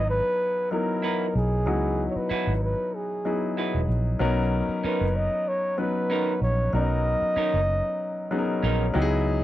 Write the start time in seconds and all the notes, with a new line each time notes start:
Already playing: G#1 F#3 B3 D#4 E4 G#4
0.10 B4
0.71 F#3 B3 D#4 E4 A#4
1.02 E4 F#4 B4
1.35 B1 G#4
1.66 C#2 F#3 B3 D#4 E4 F#4
2.10 C#5
2.16 B4, muted fingered electric bass stroke
2.29 E4 F#4 B4, muted fingered electric bass stroke
2.47 G#1
2.63 B4
2.95 G#4
3.25 F#3 B3 D#4 E4 G#4
3.57 E4 F#4 B4
3.74 E1
3.89 A#1
4.19 B1 F#3 B3 C#4 D#4 A#4
4.69 muted fingered electric bass stroke
4.84 C#4 D#4 A#4 B4, muted fingered electric bass stroke
5.01 F#1
5.16 D#5
5.48 C#5
5.78 F#3 B3 C#4 D#4 B4
6.10 C#4 D#4 A#4
6.42 A#1 C#5
6.73 B1 F#3 B3 C#4 D#4 A#4 D#5
7.22 muted fingered electric bass stroke
7.36 C#4 D#4 A#4, muted fingered electric bass stroke
7.54 F#1
8.31 F#3 B3 C#4 D#4 G#4
8.38 A#4
8.63 A#1 C#4 D#4 A#4
8.94 C#2 F#3 B3 D#4 E4 G4
9.02 G#4